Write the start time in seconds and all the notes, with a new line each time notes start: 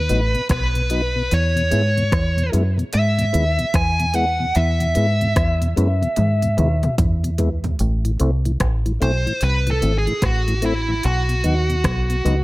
Already playing: B4
0.09 A1 F#3 B3 D#4, closed hi-hat
0.35 B2, closed hi-hat
0.49 B1 B4, kick, cross-stick, closed hi-hat
0.75 B2, closed hi-hat
0.90 F#3 B3 D#4, closed hi-hat
1.16 B2
1.31 E2 C#5, closed hi-hat
1.56 E2 B2, closed hi-hat
1.71 G#2 G#3 B3 E4, closed hi-hat
1.97 E2 B2, closed hi-hat
2.12 E2, kick, cross-stick, closed hi-hat
2.37 E2 B2, closed hi-hat
2.52 F#2 G#3 B3 E4, closed hi-hat
2.78 E2 B2, closed hi-hat
2.93 G#2 E5, closed hi-hat
3.18 E2 B2, closed hi-hat
3.33 D#2 G#3 B3 E4, closed hi-hat
3.59 E2 B2, closed hi-hat
3.74 E2 G#5, kick, cross-stick, closed hi-hat
4.00 E2 B2, closed hi-hat
4.14 G#3 B3 E4 F#5, closed hi-hat
4.40 E2 B2
4.55 E2 E5, closed hi-hat
4.80 E2 B2, closed hi-hat
4.95 G#2 G#3 B3 E4, closed hi-hat
5.21 E2 B2, closed hi-hat
5.36 E2, kick, cross-stick, closed hi-hat
5.61 E2 B2, closed hi-hat
5.76 F#2 G#3 B3 E4, closed hi-hat
6.02 E2 B2, closed hi-hat
6.16 G#2, closed hi-hat, high tom
6.42 E2 B2, closed hi-hat
6.57 D#2 G#3 B3 E4, closed hi-hat, mid tom
6.83 E2 B2, closed hi-hat, mid tom
6.98 E2, kick, closed hi-hat, mid tom
7.24 E2 B2, closed hi-hat
7.38 G#3 B3 E4, closed hi-hat, floor tom
7.64 E2 B2, closed hi-hat, floor tom
7.79 A1, closed hi-hat
8.05 A2 E3, closed hi-hat
8.20 C2 A3 C4 E4, closed hi-hat
8.45 A2 E3, closed hi-hat
8.60 A1, kick, cross-stick, closed hi-hat
8.86 A2 E3, closed hi-hat
9.00 B1 A3 C4 E4 C5, closed hi-hat
9.26 A2 E3, closed hi-hat
9.41 C2 B4, closed hi-hat
9.67 A2 E3, closed hi-hat
9.71 A4
9.82 G#1 A3 C4 E4, closed hi-hat
9.98 G#4
10.07 A2 E3, closed hi-hat
10.22 A1 F#4, kick, cross-stick, closed hi-hat
10.48 A2 E3, closed hi-hat
10.62 A3 C4 E4, closed hi-hat
10.88 A2 E3
11.03 B1 F#4, closed hi-hat
11.29 B2, closed hi-hat
11.44 D#2 F#3 B3 D#4, closed hi-hat
11.70 B2, closed hi-hat
11.84 B1, kick, cross-stick, closed hi-hat
12.10 B2, closed hi-hat
12.24 C#2 F#3 B3 D#4, closed hi-hat